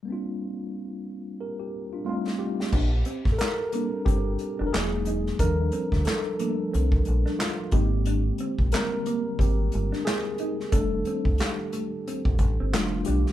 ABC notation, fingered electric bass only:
X:1
M:4/4
L:1/16
Q:"Swing 16ths" 1/4=90
K:Bb
V:1 name="Fingered electric bass" clef=bass
z16 | B,,,2 z A,,, z4 G,,,2 z F,,, =E,,,4 | E,,2 z D,, z4 C,,2 B,,, z3 _A,,,2- | _A,,,2 z B,,, z4 A,,,2 G,,, z4 z |
F,,,2 z C,, z4 z B,,, A,,, G,,, F,,,2 _C,, z |]